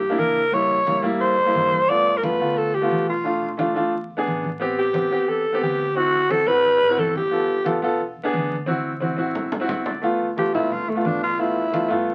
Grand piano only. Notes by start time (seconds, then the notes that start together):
0.10 A#3 D4 E4
0.52 G3 A#3 E4
0.86 G3 A#3 E4
1.02 G3 A#3 E4
1.46 G3 A#3 E4
1.88 A3 B3 F4
2.22 A3 B3 F4
2.39 A3 B3 F4
2.81 A3 B3 F4
3.24 A3 D4 F4
3.57 A3 D4 F4
3.74 A3 D4 F4
4.17 B3 D4 G#4
4.60 B3 C4 G4
4.93 B3 C4 G4
5.11 B3 C4 G4
5.52 B3 C4 G4
5.95 C4 E4 F#4
6.30 C4 E4 F#4
6.47 C4 E4 F#4
6.89 C4 E4 F#4
7.31 B3 F4 A4
7.64 B3 F4 A4
7.82 B3 F4 A4
8.23 B3 D4 G#4
8.66 C4 E4 F#4
9.00 C4 E4 F#4
9.17 C4 E4 F#4
9.60 C4 E4 F#4
9.68 F#5
9.86 D5
10.02 A3 B3 F4
10.36 A3 B3 F4
10.53 A3 B3 F4
10.95 A3 B3 F4
11.38 A3 B3 F4
11.71 A3 B3 F4
11.88 A3 B3 F4